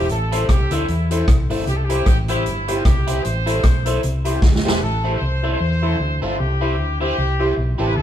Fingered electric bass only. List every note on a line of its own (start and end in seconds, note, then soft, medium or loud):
0.10 0.43 A1 loud
0.49 0.68 C2 medium
0.71 0.86 D2 medium
0.89 1.22 E2 loud
1.28 1.47 C2 medium
1.50 1.64 G1 medium
1.67 2.01 C2 loud
2.07 2.48 A1 medium
2.46 2.80 G1 medium
2.86 3.19 C2 medium
3.25 3.58 A1 loud
3.64 3.97 B1 medium
4.04 4.37 C2 loud
4.43 4.61 D2 medium
4.65 4.79 E1 medium
4.82 5.16 A1 loud
5.21 5.55 C2 medium
5.60 5.94 E2 medium
6.00 6.19 D2 medium
6.23 6.37 G1 medium
6.40 6.79 C2 loud
6.79 7.12 D2 medium
7.18 7.51 C2 medium
7.57 7.76 B1 medium
7.79 7.94 A1 medium
7.97 8.02 D2 loud